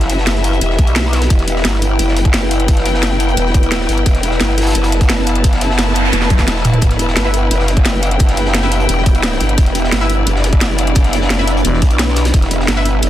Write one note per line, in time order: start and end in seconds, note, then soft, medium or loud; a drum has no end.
0.00 0.60 F#1 loud
0.00 13.10 B3 medium
0.00 6.78 E4 medium
0.00 13.10 E4 medium
0.00 1.28 G4 loud
0.00 13.10 B4 medium
0.00 1.87 E5 medium
0.00 snare soft
0.00 closed hi-hat soft
0.10 snare soft
0.10 closed hi-hat medium
0.18 snare medium
0.27 snare loud
0.27 closed hi-hat medium
0.35 snare medium
0.44 closed hi-hat medium
0.53 closed hi-hat soft
0.61 0.77 E1 loud
0.61 closed hi-hat medium
0.70 snare soft
0.79 1.29 B1 loud
0.79 kick loud
0.79 closed hi-hat medium
0.87 closed hi-hat soft
0.96 snare loud
0.96 closed hi-hat medium
1.04 snare soft
1.13 snare loud
1.13 closed hi-hat medium
1.21 snare medium
1.21 closed hi-hat medium
1.21 closed hi-hat soft
1.30 1.63 E1 loud
1.30 6.80 B4 medium
1.30 kick loud
1.30 closed hi-hat medium
1.39 snare soft
1.39 closed hi-hat soft
1.48 closed hi-hat medium
1.56 snare medium
1.65 1.98 G1 medium
1.65 snare loud
1.65 closed hi-hat medium
1.74 snare soft
1.82 4.63 G5 medium
1.82 closed hi-hat medium
1.99 3.36 F#1 medium
1.99 closed hi-hat medium
2.08 snare medium
2.16 snare soft
2.16 closed hi-hat medium
2.25 kick loud
2.25 closed hi-hat soft
2.34 snare loud
2.34 closed hi-hat medium
2.51 closed hi-hat medium
2.60 closed hi-hat soft
2.68 kick loud
2.68 closed hi-hat medium
2.77 snare medium
2.77 closed hi-hat soft
2.86 snare medium
2.86 closed hi-hat medium
2.94 snare medium
3.03 snare loud
3.03 closed hi-hat medium
3.11 snare medium
3.20 closed hi-hat medium
3.28 closed hi-hat soft
3.37 3.87 E1 loud
3.37 closed hi-hat medium
3.46 snare soft
3.54 kick loud
3.54 closed hi-hat medium
3.63 closed hi-hat soft
3.72 snare loud
3.72 closed hi-hat medium
3.81 snare medium
3.88 4.05 G1 medium
3.88 snare soft
3.88 closed hi-hat medium
3.98 closed hi-hat soft
4.06 4.39 E1 loud
4.06 kick loud
4.06 closed hi-hat medium
4.14 snare soft
4.14 closed hi-hat soft
4.23 closed hi-hat medium
4.31 snare soft
4.40 4.74 G1 loud
4.40 snare loud
4.40 closed hi-hat medium
4.49 snare soft
4.58 7.39 A5 medium
4.58 snare medium
4.58 closed hi-hat medium
4.62 snare medium
4.62 closed hi-hat medium
4.66 snare medium
4.66 closed hi-hat medium
4.71 snare medium
4.71 closed hi-hat medium
4.75 6.12 F#1 loud
4.75 closed hi-hat medium
4.83 snare loud
4.83 closed hi-hat medium
4.92 snare soft
4.92 closed hi-hat medium
5.01 kick loud
5.01 closed hi-hat soft
5.01 closed hi-hat medium
5.09 snare medium
5.09 snare loud
5.09 closed hi-hat medium
5.18 snare soft
5.27 closed hi-hat medium
5.35 closed hi-hat soft
5.44 kick loud
5.44 closed hi-hat medium
5.44 noise sweep medium
5.53 snare soft
5.53 closed hi-hat soft
5.61 snare medium
5.61 closed hi-hat medium
5.70 snare soft
5.79 snare loud
5.79 closed hi-hat medium
5.87 snare medium
5.95 closed hi-hat medium
6.05 closed hi-hat soft
6.12 6.46 E1 medium
6.12 snare medium
6.12 closed hi-hat medium
6.22 snare medium
6.22 snare soft
6.30 kick loud
6.30 closed hi-hat medium
6.30 high tom medium
6.39 kick medium
6.39 snare medium
6.39 closed hi-hat soft
6.47 6.81 E1 loud
6.47 snare medium
6.47 snare loud
6.47 closed hi-hat medium
6.56 snare medium
6.64 snare soft
6.64 closed hi-hat medium
6.64 mid tom medium
6.74 closed hi-hat soft
6.74 mid tom medium
6.82 7.15 E1 loud
6.82 13.10 D4 medium
6.82 12.31 G4 medium
6.82 kick loud
6.82 closed hi-hat medium
6.90 snare soft
6.90 closed hi-hat soft
6.99 closed hi-hat medium
7.07 snare soft
7.16 7.50 G1 loud
7.16 snare loud
7.16 closed hi-hat medium
7.25 7.34 E4 medium
7.25 7.34 B4 medium
7.25 7.34 E5 loud
7.25 snare soft
7.34 10.14 G5 medium
7.34 closed hi-hat medium
7.51 8.87 F#1 medium
7.51 closed hi-hat medium
7.59 snare soft
7.68 snare medium
7.68 closed hi-hat medium
7.77 kick loud
7.77 closed hi-hat soft
7.85 snare loud
7.85 closed hi-hat medium
8.03 closed hi-hat medium
8.11 closed hi-hat soft
8.19 kick loud
8.19 closed hi-hat medium
8.28 snare medium
8.28 closed hi-hat soft
8.37 snare soft
8.37 closed hi-hat medium
8.45 snare medium
8.54 snare loud
8.54 closed hi-hat medium
8.63 9.99 E4 medium
8.63 9.99 B4 medium
8.63 9.99 E5 medium
8.63 snare soft
8.72 closed hi-hat medium
8.80 closed hi-hat soft
8.89 9.39 E1 medium
8.89 closed hi-hat loud
8.89 closed hi-hat medium
8.98 snare soft
9.06 kick loud
9.06 closed hi-hat medium
9.15 closed hi-hat soft
9.23 snare loud
9.23 closed hi-hat loud
9.23 closed hi-hat medium
9.32 snare medium
9.40 9.57 G1 loud
9.40 snare soft
9.40 closed hi-hat medium
9.49 closed hi-hat soft
9.58 9.91 E1 loud
9.58 kick loud
9.58 closed hi-hat medium
9.66 snare soft
9.66 closed hi-hat soft
9.75 closed hi-hat medium
9.84 snare medium
9.92 10.25 G1 loud
9.92 snare loud
9.92 closed hi-hat medium
9.92 closed hi-hat loud
10.01 10.10 E4 medium
10.01 10.10 B4 medium
10.01 10.10 E5 loud
10.01 snare soft
10.10 12.90 D5 medium
10.10 closed hi-hat medium
10.27 11.63 F#1 medium
10.27 closed hi-hat medium
10.36 snare medium
10.44 snare medium
10.44 closed hi-hat medium
10.53 kick loud
10.53 closed hi-hat soft
10.61 snare loud
10.61 closed hi-hat medium
10.78 closed hi-hat medium
10.87 closed hi-hat soft
10.95 kick loud
10.95 closed hi-hat medium
11.04 snare soft
11.04 closed hi-hat soft
11.13 snare soft
11.13 closed hi-hat medium
11.21 snare medium
11.30 snare loud
11.30 closed hi-hat medium
11.39 12.75 E4 medium
11.39 12.75 B4 medium
11.39 12.75 E5 medium
11.39 snare soft
11.48 closed hi-hat medium
11.57 closed hi-hat soft
11.65 11.81 E1 loud
11.65 closed hi-hat medium
11.73 snare soft
11.82 12.32 B1 loud
11.82 kick loud
11.82 closed hi-hat medium
11.90 closed hi-hat soft
11.99 snare loud
11.99 closed hi-hat medium
12.08 snare soft
12.16 snare loud
12.16 closed hi-hat medium
12.25 snare loud
12.25 closed hi-hat medium
12.25 closed hi-hat soft
12.34 12.67 E1 loud
12.34 13.10 F#4 loud
12.34 kick loud
12.34 closed hi-hat medium
12.42 snare soft
12.42 closed hi-hat soft
12.51 closed hi-hat medium
12.60 snare soft
12.68 13.01 G1 loud
12.68 snare loud
12.68 closed hi-hat medium
12.77 12.86 E4 medium
12.77 12.86 B4 medium
12.77 12.86 E5 loud
12.77 snare soft
12.86 closed hi-hat medium
13.02 13.10 F#1 loud
13.02 closed hi-hat medium